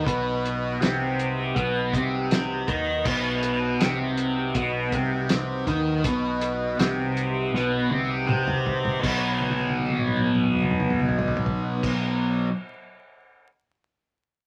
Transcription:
Already playing: F#3 D#4 B4
0.06 B1 B2 B3, kick, closed hi-hat
0.45 closed hi-hat
0.81 C2 C3 C4, snare, closed hi-hat
1.19 closed hi-hat
1.56 B1 B2 B3, kick, closed hi-hat
1.93 C2 C3 C4, kick, closed hi-hat
2.31 snare, closed hi-hat
2.68 D#2 D#3 D#4, kick, closed hi-hat
3.05 B1 B2 B3, kick, crash
3.43 closed hi-hat
3.81 C2 C3 C4, snare, closed hi-hat
4.17 closed hi-hat
4.55 B1 B2 B3, kick, closed hi-hat
4.92 C2 C3 C4, kick, closed hi-hat
5.29 snare, closed hi-hat
5.67 D#2 D#3 D#4, kick, closed hi-hat
6.04 B1 B2 B3, kick, closed hi-hat
6.41 closed hi-hat
6.79 C2 C3 C4, snare, closed hi-hat
7.17 closed hi-hat
7.53 B1 B2 B3, snare
7.90 C2 C3 C4, high tom
8.27 C2 C3 C4, mid tom
8.48 mid tom
8.66 floor tom
8.85 floor tom
8.99 B1 B2 F#3 D#4 B4
9.03 B3, kick, crash
9.41 high tom
9.51 high tom
9.60 high tom
9.70 high tom
9.79 high tom
9.89 high tom
9.98 mid tom
10.07 mid tom
10.17 mid tom
10.27 mid tom
10.35 mid tom
10.44 mid tom
10.53 mid tom
10.62 mid tom
10.71 mid tom
10.80 mid tom
10.90 mid tom
10.99 mid tom
11.09 floor tom
11.19 floor tom
11.28 floor tom
11.37 floor tom
11.46 floor tom
11.83 kick, crash

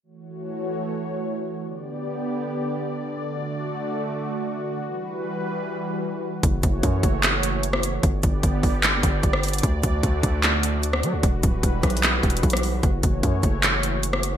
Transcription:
0.03 E3 A3 F#4 C#5
1.63 D3 B3 G4 D5
3.23 A3 F#4
4.83 E3 G3 B4
6.43 F#1 E3 A3 F#4 C#5, kick, closed hi-hat
6.63 F#1, kick, closed hi-hat
6.83 F#2, kick, closed hi-hat
7.03 F#1, kick, closed hi-hat
7.23 clap, closed hi-hat
7.43 closed hi-hat
7.63 closed hi-hat
7.73 cross-stick
7.83 closed hi-hat
8.03 G1 D3 B3 G4 D5, kick, closed hi-hat
8.23 G1, kick, closed hi-hat
8.43 G1, kick, closed hi-hat
8.63 G1, kick, open hi-hat
8.83 clap, closed hi-hat
8.93 F#1
9.03 G1, kick, closed hi-hat
9.23 G1, kick, closed hi-hat
9.33 cross-stick
9.43 closed hi-hat, open hi-hat
9.48 closed hi-hat
9.53 closed hi-hat
9.58 closed hi-hat
9.63 D2 D3 A3 F#4, kick, closed hi-hat
9.83 D2, kick, closed hi-hat
10.03 D2, kick, closed hi-hat
10.23 D2, kick, closed hi-hat
10.43 clap, closed hi-hat
10.63 closed hi-hat
10.83 closed hi-hat
10.93 cross-stick
11.03 F#3, closed hi-hat
11.13 D2
11.23 E1 E3 G3 B4, kick, closed hi-hat
11.43 D1, kick, closed hi-hat
11.63 E1, kick, closed hi-hat
11.83 B1, kick, cross-stick, closed hi-hat
11.90 closed hi-hat
11.97 closed hi-hat
12.03 clap, closed hi-hat
12.23 E1, kick, closed hi-hat
12.30 closed hi-hat
12.37 closed hi-hat
12.43 B1, kick, closed hi-hat
12.50 cross-stick, closed hi-hat
12.57 closed hi-hat
12.63 open hi-hat
12.83 F#1 E3 A3 C#5, kick, closed hi-hat
13.03 F#1, kick, closed hi-hat
13.23 F#2, kick, closed hi-hat
13.43 F#1, kick, closed hi-hat
13.63 clap, closed hi-hat
13.83 closed hi-hat
14.03 closed hi-hat
14.13 cross-stick
14.23 closed hi-hat

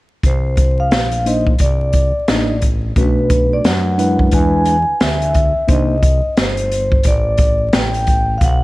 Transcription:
0.23 C2 C5, kick, closed hi-hat
0.57 kick, closed hi-hat
0.80 F5
0.91 A#1, snare, closed hi-hat
1.11 closed hi-hat
1.26 A#3 D4 D#4 C5 D#5, closed hi-hat
1.47 kick
1.59 C2 D5, kick, closed hi-hat
1.93 kick, closed hi-hat
2.15 A1
2.28 A1 A#3 D4 D#4 D#5, snare, closed hi-hat
2.62 kick, closed hi-hat
2.96 B1 A3 C#4 F#4 B4, kick, closed hi-hat
3.03 D4
3.30 kick, closed hi-hat
3.53 D5
3.64 F#2 F#5, snare, closed hi-hat
3.98 G#3 D4 E4 B4, closed hi-hat
4.19 kick
4.31 E2 G#3 D4 E4 B4 G#5, kick, closed hi-hat
4.65 closed hi-hat
4.88 D2
5.00 D2 E5, snare, closed hi-hat
5.22 closed hi-hat
5.34 kick, closed hi-hat
5.56 D2
5.67 C2 A#3 D4 D#4 C5, kick, closed hi-hat
5.72 D#5
6.03 kick, closed hi-hat
6.24 G1
6.37 G1 C5, snare, closed hi-hat
6.57 closed hi-hat
6.72 closed hi-hat
6.92 kick
7.04 A1 D5, kick, closed hi-hat
7.38 kick, closed hi-hat
7.73 A1 G5, snare, closed hi-hat
7.94 closed hi-hat
8.07 kick, closed hi-hat
8.38 B1 F5, kick, closed hi-hat
8.44 F#5

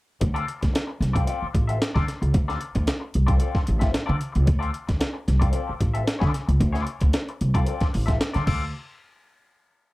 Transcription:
0.21 D2, muted clean electric guitar stroke, kick, closed hi-hat
0.34 C4 F4 A4 D5, closed hi-hat
0.47 muted clean electric guitar stroke, closed hi-hat
0.61 D2, muted clean electric guitar stroke, kick, snare, closed hi-hat
0.73 muted clean electric guitar stroke, snare, closed hi-hat
0.87 muted clean electric guitar stroke
1.00 C2, snare, closed hi-hat
1.13 C4 F4 A4 D5, kick, closed hi-hat
1.26 C4 F4 A4 D5, closed hi-hat
1.42 muted upright bass stroke
1.53 A1, muted clean electric guitar stroke, kick, closed hi-hat
1.68 C4 F4 A4 E5, closed hi-hat
1.81 muted clean electric guitar stroke, snare, closed hi-hat
1.95 D3 C4 F4 A4 D5, kick, snare
2.07 muted clean electric guitar stroke, snare, closed hi-hat
2.21 C#2, muted clean electric guitar stroke, closed hi-hat
2.34 D2, muted clean electric guitar stroke, kick, closed hi-hat
2.48 C4 F4 A4 D5, snare, closed hi-hat
2.61 muted clean electric guitar stroke, closed hi-hat
2.75 D2, muted clean electric guitar stroke, kick, closed hi-hat
2.87 muted clean electric guitar stroke, snare, closed hi-hat
3.00 muted clean electric guitar stroke
3.14 C2, closed hi-hat
3.27 C4 F4 A4 D5, kick, closed hi-hat
3.39 C4 F4 A4 D5, closed hi-hat
3.55 muted upright bass stroke, kick, snare
3.65 A1, muted clean electric guitar stroke, closed hi-hat
3.79 C4 F4 A4 E5, kick, snare, closed hi-hat
3.94 muted clean electric guitar stroke, snare, closed hi-hat
4.06 D3 C4 F4 A4 D5
4.18 muted clean electric guitar stroke, closed hi-hat
4.32 C#2, muted clean electric guitar stroke, closed hi-hat
4.46 D2, muted clean electric guitar stroke, kick, closed hi-hat
4.59 C4 F4 A4 D5, closed hi-hat
4.73 muted clean electric guitar stroke, closed hi-hat
4.87 D2, muted clean electric guitar stroke, kick, snare, closed hi-hat
5.00 muted clean electric guitar stroke, snare, closed hi-hat
5.14 muted clean electric guitar stroke
5.28 C2, snare, closed hi-hat
5.40 C4 F4 A4 D5, kick, closed hi-hat
5.52 C4 F4 A4 D5, closed hi-hat
5.69 muted upright bass stroke
5.79 A1, muted clean electric guitar stroke, kick, closed hi-hat
5.94 C4 F4 A4 E5, closed hi-hat
6.06 muted clean electric guitar stroke, snare, closed hi-hat
6.19 D3 C4 F4 A4 D5, kick, snare
6.33 muted clean electric guitar stroke, snare, closed hi-hat
6.46 C#2, muted clean electric guitar stroke, closed hi-hat
6.60 D2, muted clean electric guitar stroke, kick, closed hi-hat
6.72 C4 F4 A4 D5, snare, closed hi-hat
6.87 muted clean electric guitar stroke, closed hi-hat
7.00 D2, muted clean electric guitar stroke, kick, closed hi-hat
7.13 muted clean electric guitar stroke, snare, closed hi-hat
7.29 muted clean electric guitar stroke, closed hi-hat
7.41 C2, closed hi-hat
7.54 C4 F4 A4 D5, kick, closed hi-hat
7.66 C4 F4 A4 D5, closed hi-hat
7.80 muted upright bass stroke, kick, snare, closed hi-hat
7.93 A1, muted clean electric guitar stroke, open hi-hat
8.06 C4 F4 A4 E5, kick, snare, closed hi-hat
8.20 muted clean electric guitar stroke, snare, closed hi-hat
8.34 D3 C4 F4 A4 D5, snare, closed hi-hat
8.45 D2 C4 F4 A4 D5, kick, crash

